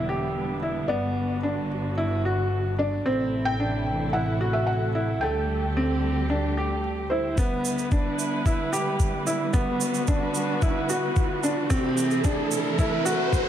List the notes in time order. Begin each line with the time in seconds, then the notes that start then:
Already playing: E1 D3 G3 B3 D4 E4 E5
0.09 G4
0.63 E4
0.88 G1 D3 B3 F#4 D5
1.43 D4
1.98 E4
2.25 F#4
2.79 D4 D5
3.05 A1 C3 E3 A3 C4 E4 A4 C5
3.45 G5
3.60 D4
4.13 E4 F#5
4.41 F#4
4.53 E5
4.67 F#5
4.95 E4
5.21 D2 D3 G3 A3 G4 G5
5.77 C4
6.30 D4
6.57 G4
7.10 E4 C5
7.38 D3 G3 B3 E4 B4, kick, riser, shaker
7.65 shaker
7.78 shaker
7.92 D4, kick, shaker
8.19 shaker
8.46 E4, kick, shaker
8.73 G4, shaker
9.00 kick, shaker
9.27 E4, shaker
9.53 B3 F#4 B4, kick, shaker
9.81 shaker
9.94 shaker
10.07 D4, kick, shaker
10.35 shaker
10.62 E4, kick, shaker
10.89 F#4, shaker
11.16 kick, shaker
11.44 D4, shaker
11.70 C3 E3 A3 C4 E4 A4, kick, shaker
11.98 shaker
12.11 shaker
12.24 D4, kick, shaker
12.51 shaker
12.79 E4, kick, shaker
13.05 F#4, shaker
13.33 kick, shaker